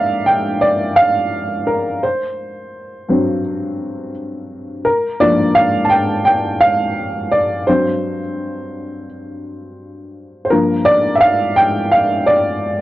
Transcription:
0.00 2.04 G2 medium
0.00 2.04 F3 soft
0.00 2.04 A#3 medium
0.00 1.67 A#4 medium
0.00 0.61 D5 loud
0.00 2.04 E5 medium
0.00 0.23 F5 loud
0.26 0.34 G5 medium
0.61 0.69 D5 medium
0.96 1.69 F5 loud
1.67 2.00 A#4 medium
2.03 3.40 C5 medium
3.08 4.10 G2 medium
3.08 4.11 F#3 soft
3.08 4.11 C4 medium
4.85 5.21 A#4 medium
5.20 7.63 G2 medium
5.20 7.64 F3 medium
5.20 7.64 A#3 medium
5.20 5.57 D5 loud
5.55 5.62 F5 loud
5.85 5.90 A5 medium
5.90 6.23 G5 medium
6.25 6.62 G5 medium
6.60 7.34 F5 loud
7.31 7.68 D5 medium
7.67 8.18 G2 soft
7.67 8.19 F#3 soft
7.67 8.19 C4 medium
7.67 9.04 C5 medium
10.45 10.50 C5 medium
10.50 12.81 G2 medium
10.50 12.81 F3 soft
10.50 12.81 A#3 medium
10.50 10.83 A#4 medium
10.85 11.13 D5 loud
11.16 11.20 E5 medium
11.21 11.57 F5 loud
11.56 11.92 G5 loud
11.92 12.24 F5 medium
12.26 12.81 D5 loud

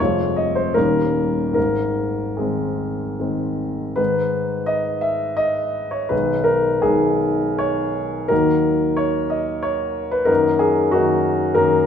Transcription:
0.00 0.74 F1 soft
0.00 0.74 F2 soft
0.00 0.72 C3 soft
0.00 0.72 G#3 soft
0.00 0.73 F4 soft
0.00 0.37 C#5 medium
0.36 0.56 D#5 medium
0.55 0.75 C5 medium
0.74 1.54 D#1 soft
0.74 1.54 D#2 soft
0.74 1.53 D#3 soft
0.74 1.53 G3 soft
0.74 1.53 C#4 soft
0.74 1.53 A#4 medium
1.53 3.93 G#2 soft
1.53 2.38 A#4 medium
1.58 3.96 G#1 soft
2.37 3.16 D#3 soft
2.37 3.16 G#3 soft
2.37 3.16 C4 soft
2.37 3.59 G#4 soft
3.20 3.95 D#3 soft
3.20 3.95 G#3 soft
3.20 3.95 C4 soft
3.96 6.07 G#2 soft
3.96 6.07 D#3 soft
3.96 6.07 G#3 soft
3.96 6.07 D#4 soft
3.96 4.68 B4 medium
4.66 5.03 D#5 medium
5.01 5.38 E5 medium
5.37 5.92 D#5 medium
5.91 6.11 C#5 medium
6.09 6.80 B1 soft
6.09 6.80 D#3 soft
6.09 6.81 G#3 soft
6.09 6.80 D#4 soft
6.09 6.46 B4 medium
6.44 6.81 A#4 medium
6.82 8.26 B1 soft
6.82 8.27 D#3 soft
6.82 8.27 G#3 soft
6.82 8.27 D#4 soft
6.82 7.60 G#4 medium
7.58 8.30 C#5 medium
8.28 10.25 D#2 soft
8.28 10.25 D#3 soft
8.28 10.25 F#3 soft
8.28 10.26 D#4 soft
8.28 8.97 A#4 medium
8.97 9.31 C#5 medium
9.30 9.64 D#5 medium
9.63 10.12 C#5 medium
10.11 10.29 B4 medium
10.25 10.90 F#2 soft
10.25 10.91 D#3 soft
10.25 10.91 A#3 soft
10.25 10.91 D#4 soft
10.25 10.60 A#4 medium
10.59 10.93 G#4 medium
10.91 11.54 F#2 soft
10.91 11.54 D#3 soft
10.91 11.54 A#3 soft
10.91 11.54 D#4 soft
10.91 11.57 F#4 medium
11.54 11.86 F#2 soft
11.54 11.86 D#3 soft
11.54 11.86 A#3 soft
11.54 11.86 D#4 soft
11.54 11.86 A#4 medium

